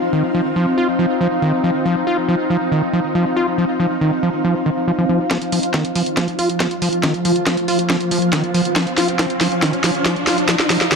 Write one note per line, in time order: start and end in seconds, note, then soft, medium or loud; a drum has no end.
0.00 5.32 C4 medium
0.00 5.33 D#4 medium
0.00 5.30 F4 medium
0.00 5.31 C5 medium
0.00 5.31 F5 medium
0.13 0.23 D#3 medium
0.34 0.41 F3 medium
0.56 0.66 F3 medium
0.78 0.88 F4 medium
0.99 1.06 F3 medium
1.21 1.28 F3 medium
1.42 1.52 D#3 medium
1.64 1.71 F3 medium
1.85 1.96 F3 medium
2.07 2.17 F4 medium
2.29 2.36 F3 medium
2.50 2.57 F3 medium
2.72 2.82 D#3 medium
2.93 3.00 F3 medium
3.15 3.25 F3 medium
3.36 3.47 F4 medium
3.58 3.65 F3 medium
3.80 3.87 F3 medium
4.01 4.12 D#3 medium
4.23 4.30 F3 medium
4.44 4.55 F3 medium
4.66 4.70 D#3 medium
4.88 4.92 F3 medium
4.98 5.05 F3 medium
5.09 5.19 F3 medium
5.31 10.96 F3 medium
5.31 5.38 F3 medium
5.31 10.96 F4 medium
5.31 kick loud
5.31 snare soft
5.31 closed hi-hat medium
5.31 riser medium
5.42 closed hi-hat medium
5.52 5.59 F3 medium
5.52 open hi-hat loud
5.63 closed hi-hat medium
5.71 5.84 D#3 medium
5.71 10.96 C5 medium
5.71 kick loud
5.71 snare soft
5.71 closed hi-hat medium
5.85 closed hi-hat medium
5.95 6.02 F3 medium
5.95 10.96 F5 medium
5.95 open hi-hat medium
6.06 closed hi-hat medium
6.17 6.27 F3 medium
6.17 kick loud
6.17 snare medium
6.17 closed hi-hat medium
6.28 closed hi-hat medium
6.39 6.49 F4 medium
6.39 open hi-hat loud
6.49 closed hi-hat medium
6.60 6.67 F3 medium
6.60 kick loud
6.60 snare medium
6.60 closed hi-hat medium
6.71 closed hi-hat medium
6.82 6.89 F3 medium
6.82 open hi-hat medium
6.93 closed hi-hat medium
7.03 7.14 D#3 medium
7.03 kick loud
7.03 snare medium
7.03 closed hi-hat medium
7.14 closed hi-hat medium
7.25 7.32 F3 medium
7.25 open hi-hat loud
7.36 closed hi-hat medium
7.47 7.57 F3 medium
7.47 kick loud
7.47 snare medium
7.47 closed hi-hat medium
7.57 closed hi-hat medium
7.68 7.78 F4 medium
7.68 open hi-hat medium
7.79 closed hi-hat medium
7.90 7.97 F3 medium
7.90 kick loud
7.90 snare medium
7.90 closed hi-hat medium
8.01 closed hi-hat medium
8.11 8.18 F3 medium
8.11 open hi-hat loud
8.22 closed hi-hat medium
8.33 8.43 D#3 medium
8.33 kick loud
8.33 snare medium
8.33 closed hi-hat medium
8.44 closed hi-hat medium
8.54 8.61 F3 medium
8.54 open hi-hat medium
8.65 closed hi-hat medium
8.76 8.86 F3 medium
8.76 kick loud
8.76 snare medium
8.76 closed hi-hat medium
8.87 closed hi-hat medium
8.98 9.08 F4 medium
8.98 snare medium
8.98 open hi-hat loud
9.08 closed hi-hat medium
9.19 9.26 F3 medium
9.19 kick loud
9.19 snare medium
9.19 closed hi-hat medium
9.30 closed hi-hat medium
9.41 9.48 F3 medium
9.41 snare medium
9.41 open hi-hat loud
9.52 closed hi-hat medium
9.62 9.73 D#3 medium
9.62 kick loud
9.62 snare medium
9.62 closed hi-hat medium
9.73 closed hi-hat medium
9.84 9.91 F3 medium
9.84 snare medium
9.84 open hi-hat loud
9.95 closed hi-hat medium
10.06 10.16 F3 medium
10.06 kick loud
10.06 snare medium
10.06 closed hi-hat medium
10.16 closed hi-hat medium
10.27 10.37 F4 medium
10.27 snare medium
10.27 open hi-hat loud
10.38 closed hi-hat medium
10.49 10.56 F3 medium
10.49 kick loud
10.49 snare medium
10.49 closed hi-hat medium
10.60 snare medium
10.60 closed hi-hat medium
10.70 10.77 F3 medium
10.70 snare medium
10.70 open hi-hat loud
10.81 snare medium
10.81 closed hi-hat medium
10.92 10.96 D#3 medium
10.92 kick loud
10.92 snare loud
10.92 closed hi-hat medium